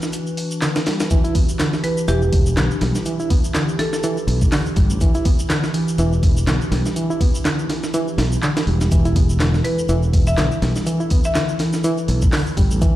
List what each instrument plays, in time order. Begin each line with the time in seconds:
Already playing: reed electric piano E3, ambient pad E3 D4 F#4 B4
0.02 snare, shaker
0.13 closed hi-hat, shaker
0.27 shaker
0.37 closed hi-hat, open hi-hat
0.51 shaker
0.62 reed electric piano D3, snare, clap, closed hi-hat, shaker
0.75 snare, closed hi-hat, shaker
0.86 reed electric piano G3, snare, closed hi-hat, open hi-hat
1.00 snare, closed hi-hat, shaker
1.10 reed electric piano E3, ambient pad E4 G4, kick, closed hi-hat, shaker
1.24 reed electric piano E4, closed hi-hat, shaker
1.35 reed electric piano B3, kick, closed hi-hat, open hi-hat
1.49 shaker
1.59 reed electric piano D3, snare, clap, closed hi-hat, shaker
1.73 snare, shaker
1.84 reed electric piano E3, marimba B4, closed hi-hat, open hi-hat
1.98 shaker
2.08 fingered electric bass E1, reed electric piano E3, marimba G4, closed hi-hat, shaker
2.22 shaker
2.32 kick, closed hi-hat, open hi-hat
2.46 shaker
2.57 fingered electric bass B1, reed electric piano D3, snare, clap, closed hi-hat, shaker
2.71 shaker
2.81 fingered electric bass B1, reed electric piano G3, snare, closed hi-hat, open hi-hat
2.95 snare, shaker
3.06 reed electric piano E3, closed hi-hat, shaker
3.20 reed electric piano E4, shaker
3.30 reed electric piano B3, kick, closed hi-hat, open hi-hat
3.44 shaker
3.55 reed electric piano D3, snare, clap, closed hi-hat, shaker
3.69 shaker
3.79 reed electric piano E3, marimba A4, snare, closed hi-hat, open hi-hat
3.93 marimba A4, snare, shaker
4.03 reed electric piano E3, closed hi-hat, shaker
4.17 shaker
4.27 fingered electric bass B1, closed hi-hat, open hi-hat
4.42 kick, shaker
4.52 reed electric piano D3, snare, clap, open hi-hat, shaker
4.66 shaker
4.76 fingered electric bass G1, reed electric piano G3, kick, closed hi-hat, open hi-hat
4.90 fingered electric bass A1, shaker
5.01 reed electric piano E3, kick, closed hi-hat, shaker
5.15 reed electric piano E4, closed hi-hat, shaker
5.25 reed electric piano B3, kick, closed hi-hat, open hi-hat
5.39 shaker
5.50 reed electric piano D3, snare, clap, closed hi-hat, shaker
5.64 snare, shaker
5.74 reed electric piano E3, closed hi-hat, open hi-hat
5.88 shaker
5.98 fingered electric bass E1, reed electric piano E3, closed hi-hat, shaker
6.13 shaker
6.23 kick, closed hi-hat, open hi-hat
6.37 shaker
6.47 fingered electric bass B1, reed electric piano D3, snare, clap, closed hi-hat, shaker
6.62 shaker
6.71 fingered electric bass B1, reed electric piano G3, snare, closed hi-hat, open hi-hat
6.86 snare, shaker
6.96 reed electric piano E3, closed hi-hat, shaker
7.10 reed electric piano E4, shaker
7.21 reed electric piano B3, kick, closed hi-hat, open hi-hat
7.35 shaker
7.45 reed electric piano D3, snare, clap, closed hi-hat, shaker
7.59 shaker
7.69 reed electric piano E3, snare, closed hi-hat, open hi-hat
7.83 snare, shaker
7.94 reed electric piano E3, closed hi-hat, shaker
8.08 shaker
8.18 fingered electric bass B1, snare, closed hi-hat, open hi-hat
8.32 shaker
8.43 reed electric piano D3, snare, clap, closed hi-hat, shaker
8.56 snare, closed hi-hat, shaker
8.67 fingered electric bass E1, reed electric piano G3, open hi-hat
8.81 snare, closed hi-hat, shaker
8.91 reed electric piano E3, ambient pad A4, kick, closed hi-hat, shaker
9.05 reed electric piano E4, closed hi-hat, shaker
9.16 reed electric piano B3, kick, closed hi-hat, open hi-hat
9.30 shaker
9.40 reed electric piano D3, snare, clap, closed hi-hat, shaker
9.54 snare, shaker
9.64 reed electric piano E3, marimba B4, closed hi-hat, open hi-hat
9.79 shaker
9.89 fingered electric bass E1, reed electric piano E3, closed hi-hat, shaker
10.03 shaker
10.13 kick, closed hi-hat, open hi-hat
10.27 marimba E5, shaker
10.38 fingered electric bass B1, reed electric piano D3, snare, clap, closed hi-hat, shaker
10.52 shaker
10.62 fingered electric bass B1, reed electric piano G3, snare, closed hi-hat, open hi-hat
10.76 snare, shaker
10.86 reed electric piano E3, closed hi-hat, shaker
11.00 reed electric piano E4, shaker
11.10 reed electric piano B3, kick, closed hi-hat, open hi-hat
11.24 marimba E5, shaker
11.35 reed electric piano D3, snare, clap, closed hi-hat, shaker
11.49 shaker
11.59 reed electric piano E3, snare, closed hi-hat, open hi-hat
11.73 snare, shaker
11.84 reed electric piano E3, closed hi-hat, shaker
11.98 shaker
12.08 fingered electric bass B1, closed hi-hat, open hi-hat
12.22 kick, shaker
12.32 reed electric piano D3, snare, clap, open hi-hat, shaker
12.47 shaker
12.57 fingered electric bass G1, reed electric piano G3, kick, closed hi-hat, open hi-hat
12.71 fingered electric bass A1, shaker
12.81 reed electric piano E3, kick, closed hi-hat, shaker